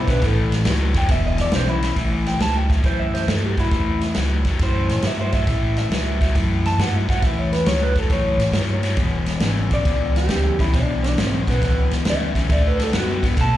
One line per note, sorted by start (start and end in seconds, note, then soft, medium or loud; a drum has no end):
0.07 0.23 B2 medium
0.07 0.20 D3 medium
0.07 0.21 B3 medium
0.07 0.22 D4 medium
0.07 0.26 B4 medium
0.07 kick medium
0.07 snare soft
0.07 ride medium
0.22 0.63 A1 loud
0.22 0.63 A2 medium
0.22 0.63 E3 loud
0.22 0.52 A4 loud
0.22 kick loud
0.22 snare soft
0.22 ride medium
0.52 snare soft
0.52 ride medium
0.65 0.93 C#2 medium
0.65 0.92 A2 medium
0.65 0.92 F#3 loud
0.65 snare loud
0.65 ride medium
0.94 1.08 E2 medium
0.94 1.08 A2 medium
0.94 1.08 F#3 medium
0.94 1.10 G5 medium
0.94 kick medium
0.94 snare soft
0.94 ride medium
1.08 1.37 E1 loud
1.08 1.50 E2 medium
1.08 1.50 B2 medium
1.08 1.25 E5 medium
1.08 kick loud
1.08 snare soft
1.08 ride medium
1.27 1.39 D#5 medium
1.37 1.51 E2 loud
1.37 snare soft
1.37 ride medium
1.41 1.54 D5 medium
1.52 1.93 B1 medium
1.52 1.80 E2 medium
1.52 1.80 C#3 loud
1.52 1.68 C5 medium
1.52 snare loud
1.52 ride medium
1.69 1.97 E4 loud
1.82 1.95 E2 medium
1.82 1.95 C#3 medium
1.82 snare soft
1.82 ride medium
1.95 2.37 A1 medium
1.95 2.37 A2 medium
1.95 2.37 E3 medium
1.95 kick loud
1.95 snare soft
1.95 ride medium
2.26 2.41 G5 medium
2.26 snare soft
2.26 ride medium
2.39 2.68 C#2 medium
2.39 2.66 A2 medium
2.39 2.67 F#3 medium
2.39 2.57 A5 medium
2.39 snare loud
2.39 ride medium
2.57 2.71 G5 medium
2.69 2.83 D2 medium
2.69 2.81 A2 medium
2.69 2.82 F#3 medium
2.69 2.85 E5 medium
2.69 kick medium
2.69 snare soft
2.69 ride medium
2.83 3.25 F#2 medium
2.83 3.24 A2 medium
2.83 3.25 E3 medium
2.83 2.99 C5 medium
2.83 kick loud
2.83 snare soft
2.83 ride medium
2.99 3.13 E5 medium
3.14 3.29 C5 medium
3.14 snare soft
3.14 ride medium
3.27 3.55 G2 medium
3.27 3.54 A2 medium
3.27 3.55 F#3 loud
3.27 3.44 A4 medium
3.27 snare loud
3.27 ride medium
3.44 3.58 G4 medium
3.57 3.71 F#2 medium
3.57 3.70 A2 medium
3.57 3.71 F#3 medium
3.57 4.01 E4 medium
3.57 kick medium
3.57 snare soft
3.57 ride medium
3.71 4.13 E2 medium
3.71 4.13 A2 medium
3.71 4.13 E3 medium
3.71 kick loud
3.71 snare soft
3.71 ride medium
4.01 snare soft
4.01 ride medium
4.14 4.44 C#2 medium
4.14 4.42 A2 medium
4.14 4.43 F#3 medium
4.14 snare loud
4.14 ride medium
4.45 4.59 E2 medium
4.45 4.59 A2 medium
4.45 4.59 F#3 medium
4.45 kick medium
4.45 snare soft
4.45 ride medium
4.59 4.87 F#2 medium
4.59 5.01 A2 medium
4.59 5.01 E3 medium
4.59 5.04 C5 medium
4.59 kick loud
4.59 snare soft
4.59 ride medium
4.89 5.02 A2 medium
4.89 snare soft
4.89 ride medium
5.02 5.44 G2 medium
5.02 5.31 A2 medium
5.02 5.31 F#3 medium
5.02 snare loud
5.02 ride medium
5.07 5.19 E5 medium
5.21 5.34 C5 medium
5.32 5.46 A2 medium
5.32 5.46 F#3 medium
5.32 5.76 E5 medium
5.32 kick medium
5.32 snare soft
5.32 ride medium
5.47 5.88 A1 loud
5.47 5.88 A2 medium
5.47 5.89 E3 medium
5.47 kick loud
5.47 snare soft
5.47 ride medium
5.77 6.20 E5 loud
5.77 snare soft
5.77 ride medium
5.90 6.18 C#2 medium
5.90 6.18 A2 medium
5.90 6.18 F#3 loud
5.90 snare loud
5.90 ride medium
6.21 6.34 D2 medium
6.21 6.34 A2 medium
6.21 6.34 F#3 medium
6.21 kick medium
6.21 snare soft
6.21 ride medium
6.35 6.76 F#2 medium
6.35 6.76 A2 medium
6.35 6.77 E3 medium
6.35 kick loud
6.35 snare soft
6.35 ride medium
6.65 6.81 A5 loud
6.65 snare soft
6.65 ride medium
6.78 7.06 G2 loud
6.78 7.06 A2 medium
6.78 7.06 F#3 medium
6.78 6.96 F#5 medium
6.78 snare loud
6.78 ride medium
6.96 7.09 E5 medium
7.08 7.21 A2 medium
7.08 7.22 F#3 medium
7.08 7.23 F#5 medium
7.08 kick medium
7.08 snare soft
7.08 ride medium
7.22 7.64 E2 medium
7.22 7.64 A2 medium
7.22 7.64 E3 medium
7.22 7.39 E5 loud
7.22 kick loud
7.22 snare soft
7.22 ride medium
7.39 7.52 C#5 medium
7.53 7.66 B4 medium
7.53 snare soft
7.53 ride medium
7.65 7.94 C#2 medium
7.65 7.93 A2 medium
7.65 7.93 F#3 medium
7.65 7.81 C#5 medium
7.65 snare loud
7.65 ride medium
7.82 7.96 B4 medium
7.95 8.09 E2 medium
7.95 8.08 A2 medium
7.95 8.09 F#3 medium
7.95 8.11 A4 medium
7.95 kick medium
7.95 snare soft
7.95 ride medium
8.09 8.37 F#2 medium
8.09 8.51 A2 medium
8.09 8.51 E3 medium
8.09 9.39 C#5 medium
8.09 kick loud
8.09 snare soft
8.09 ride medium
8.37 8.51 A2 medium
8.37 snare soft
8.37 ride medium
8.52 8.94 G2 medium
8.52 8.81 A2 medium
8.52 8.81 F#3 medium
8.52 snare loud
8.52 ride medium
8.83 8.96 A2 medium
8.83 8.97 F#3 medium
8.83 snare soft
8.83 ride medium
8.97 9.39 E1 medium
8.97 9.39 E2 medium
8.97 9.39 B2 medium
8.97 kick loud
8.97 snare soft
8.97 ride medium
9.26 snare soft
9.26 ride medium
9.40 9.69 G#1 medium
9.40 9.69 E2 medium
9.40 9.69 C#3 medium
9.40 snare loud
9.40 ride medium
9.71 9.84 A1 medium
9.71 9.84 E2 medium
9.71 9.84 C#3 medium
9.71 10.15 D5 loud
9.71 kick medium
9.71 snare soft
9.71 ride medium
9.85 10.27 C#2 medium
9.85 10.27 E2 medium
9.85 10.27 B2 medium
9.85 kick loud
9.85 snare soft
9.85 ride medium
10.16 10.59 G4 medium
10.16 snare soft
10.16 ride medium
10.29 10.57 D2 medium
10.29 10.56 E2 medium
10.29 10.56 C#3 medium
10.29 snare loud
10.29 ride medium
10.59 10.73 C#2 medium
10.59 10.72 E2 medium
10.59 10.72 C#3 medium
10.59 10.74 E4 medium
10.59 kick medium
10.59 snare soft
10.59 ride medium
10.73 11.14 B1 medium
10.73 11.14 E2 medium
10.73 11.14 B2 loud
10.73 11.02 D4 medium
10.73 kick loud
10.73 snare soft
10.73 ride medium
11.04 11.17 D4 loud
11.04 snare soft
11.04 ride medium
11.16 11.45 G#1 medium
11.16 11.44 E2 medium
11.16 11.44 C#3 medium
11.16 11.47 C4 medium
11.16 snare loud
11.16 ride medium
11.47 11.60 B1 medium
11.47 11.60 E2 medium
11.47 11.60 C#3 medium
11.47 11.91 B3 loud
11.47 kick medium
11.47 snare soft
11.47 ride medium
11.62 11.89 C#2 medium
11.62 12.03 E2 medium
11.62 12.03 B2 medium
11.62 kick loud
11.62 snare soft
11.62 ride medium
11.91 12.04 E2 medium
11.91 snare soft
11.91 ride medium
12.05 12.49 D2 loud
12.05 12.32 E2 medium
12.05 12.32 C#3 medium
12.05 snare loud
12.05 ride medium
12.10 12.50 E5 medium
12.35 12.48 E2 medium
12.35 12.48 C#3 medium
12.35 kick medium
12.35 snare soft
12.35 ride medium
12.49 12.90 D2 medium
12.49 12.90 D3 medium
12.49 12.90 A3 medium
12.49 12.68 D5 medium
12.49 kick loud
12.49 snare soft
12.49 ride medium
12.68 12.80 B4 medium
12.79 snare soft
12.79 ride medium
12.84 12.95 A4 medium
12.93 13.21 F#2 medium
12.93 13.20 D3 medium
12.93 13.20 B3 loud
12.93 snare loud
12.93 ride medium
12.97 13.24 F#4 loud
13.22 13.36 G2 medium
13.22 13.35 D3 medium
13.22 13.35 B3 medium
13.22 kick medium
13.22 snare soft
13.22 ride medium
13.36 13.57 B2 medium
13.36 13.57 D3 medium
13.36 13.57 A3 medium
13.36 kick loud
13.36 snare soft
13.36 ride loud
13.41 13.56 A5 loud